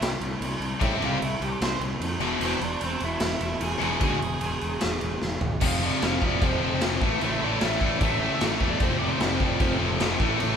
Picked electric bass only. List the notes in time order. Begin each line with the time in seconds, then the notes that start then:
0.01 C2
0.21 C2
0.41 C2
0.60 C2
0.82 A2
1.02 C2
1.21 C2
1.41 C2
1.61 C2
1.80 C2
2.00 F2
2.20 E1
2.40 E1
2.61 E1
2.82 E1
3.02 E1
3.21 E1
3.41 E1
3.60 E1
3.82 E1
4.01 D2
4.23 E1
4.42 E1
4.63 E1
4.83 E1
5.02 E1
5.23 E1
5.42 G#1
5.62 F1
6.03 F1
6.22 F1
6.42 F1
6.63 F1
6.83 F1
7.02 A1
7.23 A1
7.43 A1
7.63 A1
7.82 A1
8.01 A1
8.42 A1
8.61 E1
8.81 F1
9.22 F1
9.41 F1
9.61 F1
9.81 F1
10.00 F1
10.20 A1
10.41 A1